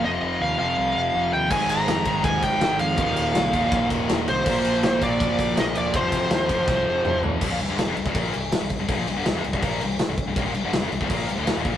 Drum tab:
CC |----------------|x---------------|----------------|x---------------|
RD |----------------|--x-x-x-x-x-x-x-|x-x-x-x-x-x-x-x-|--x-x-x-x-x-x-x-|
SD |----------------|----o-------o---|----o-------o---|----o-------o---|
T2 |----------------|----------------|----------------|----------------|
FT |----------------|----------------|----------------|----------------|
BD |----------------|o-----o-o-o-----|o-----o-o-o-----|o-----o-o-o-----|

CC |----------------|x-x-x-x-x-x-x-x-|x-x-x-x-x-x-x-x-|x-x-x-x-x-x-x-x-|
RD |x-x-x-x---------|----------------|----------------|----------------|
SD |----o---o-------|----o-------o---|----oo------o---|----oo------o---|
T2 |------------o---|----------------|----------------|----------------|
FT |--------------o-|----------------|----------------|----------------|
BD |o-o---o-o-------|o------oo-----o-|o------oo-----o-|o------oo-----o-|